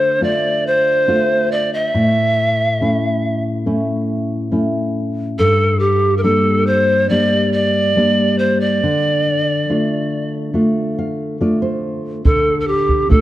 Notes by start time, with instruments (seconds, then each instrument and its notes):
Already playing: nylon-string guitar D3 A3 D4 F4, pan flute C5
0.21 nylon-string guitar A3 D4 F4, pan flute D5
0.67 pan flute C5
1.08 nylon-string guitar A3 D4 F4
1.52 pan flute D5
1.74 pan flute D#5
1.86 pan flute E5
1.94 nylon-string guitar A2
2.81 nylon-string guitar A3 C#4 E4
3.66 nylon-string guitar A3 C#4 E4
4.52 nylon-string guitar A3 C#4 E4
5.39 nylon-string guitar G2, pan flute A4
5.79 pan flute G4
6.18 pan flute A#4
6.23 nylon-string guitar G3 A#3 D4, pan flute A4
6.67 pan flute C5
7.09 nylon-string guitar G3 A#3 D4, pan flute D5
7.53 pan flute D5
7.96 nylon-string guitar G3 A#3 D4
8.39 pan flute C5
8.60 pan flute D5
8.83 nylon-string guitar D3
9.70 nylon-string guitar A3 D4 F4
10.54 nylon-string guitar A3 D4 F4
10.99 nylon-string guitar F5
11.41 nylon-string guitar A3 D4 F4 D5
11.62 nylon-string guitar C5
12.25 nylon-string guitar D3, pan flute A4, bombo low
12.60 pan flute A4
12.68 pan flute G4
12.89 bombo low
13.09 nylon-string guitar A3 D4 F4, pan flute A4, bombo low